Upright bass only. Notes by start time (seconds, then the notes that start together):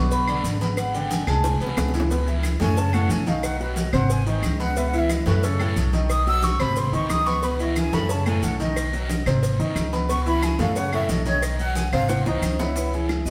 Already playing: B1
0.44 G#1
1.27 C#2
1.60 B1
1.77 C#2
2.60 F#2
3.10 B1
3.93 G#1
4.42 C#2
5.26 F#2
5.76 B1
6.60 G#1
6.92 C2
7.09 C#2
7.93 F#2
8.43 B1
9.26 G#1
9.59 C2
9.76 C#2
10.59 F#2
11.09 B1
11.92 G#1
12.26 C2
12.42 C#2
13.25 G#1